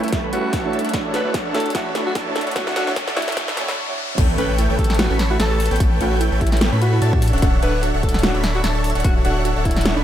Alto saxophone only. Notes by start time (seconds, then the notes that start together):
0.03 E4
0.33 F#4
1.14 B4
1.54 A4
1.75 F#4
2.06 F#4
2.56 F#4
2.67 F#4
2.76 F#4
3.17 E4
4.38 B4
4.79 A4
4.99 F#4
5.31 F#4
5.40 A4
6.01 F#4
6.41 E4
6.52 E4
6.82 F#4
7.63 B4
8.03 A4
8.23 F#4
8.55 F#4
9.04 F#4
9.16 F#4
9.25 F#4
9.65 E4